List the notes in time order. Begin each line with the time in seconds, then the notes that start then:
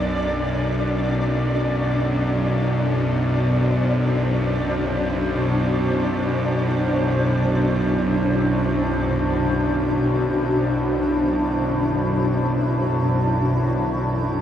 Already playing: B1 F#2 B2 D4 D5
0.17 D4 F#4
0.97 E4
2.20 C5